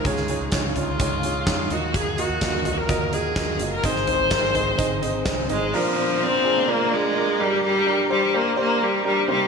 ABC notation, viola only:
X:1
M:4/4
L:1/16
Q:1/4=127
K:Abmix
V:1 name="Viola"
A4 z2 F8 G2 | A2 G4- G B3 A4- A B | c12 z2 A,2 | [K:Gphr] F,4 C4 B,2 A,4 G,2 |
G,4 G,2 B,2 B,2 G,2 G,2 G,2 |]